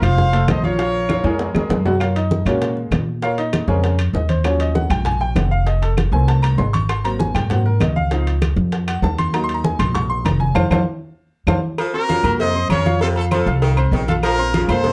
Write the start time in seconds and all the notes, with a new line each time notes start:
0.02 F1 F3 F4 C5 F5, high conga, low conga, high timbale, claves
0.18 high bongo, high conga, low conga
0.33 A3 A4 C5, high conga, high timbale
0.48 A#1 C5 D#5, high bongo, low bongo, high conga, high timbale, low timbale, claves
0.63 F3 F4 A#4 C#5 F5, high conga
0.78 F3 F4 F5, high bongo, high conga, high timbale
0.94 high conga
1.09 F3 F4 F5, high bongo, high conga, high timbale, claves
1.24 F2 G#3 G#4 A#4, high bongo, high conga, high timbale
1.39 high bongo, high conga, low timbale
1.54 F2 G#3 G#4 A#4, high bongo, high conga, low timbale, claves
1.69 F#2, high bongo, low bongo, high conga, low timbale
1.85 F#3 F#4 F#5, high bongo, low conga, low timbale
2.00 F4 A#4 C#5 F5, high bongo, high conga, high timbale, claves
2.16 D#4 D#5, high bongo, high conga, high timbale
2.31 high bongo, high conga
2.45 A#2 G#3 A#3 C#4 F4 F#4 A#4 C#5, high bongo, high conga, low conga, high timbale, claves
2.62 high bongo, high conga, high timbale
2.77 high bongo, high conga
2.91 A#2, high bongo, low bongo, high conga, high timbale, low timbale, claves
3.22 F4 A#4 C#5 F5, high bongo, high conga, high timbale
3.38 D#4 D#5, high bongo, high conga, high timbale
3.53 high bongo, high conga, high timbale, claves
3.68 F2 C#3 G#3 C4 C#4 G#4 A#4 C#5, high bongo, high conga
3.84 high bongo, high conga, high timbale
3.99 high bongo, high conga, high timbale, claves
4.13 D#2 D#5, high bongo, low bongo, high conga
4.29 C5, high conga, high timbale
4.44 F3 F#3 C#4 C#5, high bongo, high conga, high timbale, claves
4.60 D#5, high bongo, high conga, high timbale
4.75 F#5, high bongo, high conga
4.90 A#1 G5, high conga, low conga, high timbale, claves
5.05 G#5, high bongo, high conga, low conga, high timbale
5.20 G5, high bongo, high conga
5.35 F1 F#5, high bongo, low bongo, high conga, high timbale, low timbale, claves
5.51 F5
5.66 D#5, high bongo, high conga, high timbale
5.82 A4, high bongo, high conga, high timbale
5.97 high bongo, high conga, high timbale, claves
6.12 C2 D#3 A3 C4 G#5, high bongo, high conga
6.28 A5, high bongo, high conga, high timbale
6.42 A#5, high bongo, high conga, high timbale, claves
6.58 G#1 C6, high bongo, low bongo, low timbale
6.73 C#6, high conga, high timbale
6.89 C6, high bongo, high conga, high timbale, claves
7.04 F#3 A#3 C4 A#5, high bongo, high conga, high timbale
7.19 G#5, high bongo, high conga
7.34 G#2 G5, high bongo, high conga, low conga, high timbale, claves
7.50 F#3 A#3 C4 F#5, high bongo, high conga, low conga, high timbale
7.66 A#4, high bongo, high conga
7.80 C#2 D#5, high bongo, low bongo, high conga, high timbale, low timbale, claves
7.96 F5, high conga
8.11 F3 C4 D#4, high bongo, high conga, high timbale
8.27 high bongo, high conga, high timbale
8.42 high bongo, high conga, high timbale, claves
8.56 F2, high bongo, high conga
8.72 high bongo, high conga, high timbale
8.88 F#5, high bongo, high conga, high timbale, claves
9.02 D#2 A5, high bongo, low bongo, high conga
9.18 C6, high conga, high timbale
9.33 F#3 A#3 D#4 A#5, high bongo, high conga, high timbale, claves
9.44 C6
9.49 high bongo, high conga, high timbale
9.54 A#5
9.64 G#5, high bongo, high conga
9.79 A#1 C6, high bongo, high conga, low conga, high timbale, claves
9.95 C#6, high bongo, high conga, low conga, high timbale
10.10 C6, high bongo, high conga
10.25 F1 A#5, high bongo, low bongo, high conga, high timbale, claves
10.40 G#5, high conga
10.55 F2 C5 F5 A5, low bongo, high conga, high timbale, claves
10.70 F2 C5 F5 A5, low bongo, high conga, high timbale, claves
11.47 F2 C5 F5 A5, low bongo, high conga, high timbale, claves
11.78 F3, cowbell, high conga, low agogo, claves
11.93 C4 F#4 A#4 C5 C6, high conga
12.09 C#3 F3 F4 F5, cowbell, high conga, low agogo
12.24 F2 A#3 A#4 A#5, cowbell, high conga, low conga, low agogo, claves
12.40 C3 C5 D#5, cowbell, high conga
12.55 C4 C5 C6, high conga
12.69 F2 C#3 A#4 C#5, cowbell, high conga, low agogo, claves
12.86 F3 F4 F5, cowbell, high conga
13.01 C3 F3 F4 A4 F5, cowbell, high conga, low agogo
13.16 F4 A4, high conga, low agogo
13.31 F3 C4 F4 A4 C5 C6, cowbell, high conga, low agogo, claves
13.46 C2 F4 F5 F6, cowbell, high conga
13.62 D#3, cowbell, high conga, low agogo
13.77 C4 C5 C6, high conga, low agogo, claves
13.92 A#1 D#3, cowbell, high conga, low timbale
14.08 F4 A4 F5 F6, cowbell, high conga, low agogo
14.23 F3 F4 A#4, cowbell, high conga, low agogo, claves
14.38 C4 C5 C6, high conga
14.54 C#3 F3 F4 F5, cowbell, high conga, low agogo
14.68 F2 A#3 A4 C5 F5, cowbell, high conga, low conga, low agogo, claves
14.84 C3, cowbell, high conga, low conga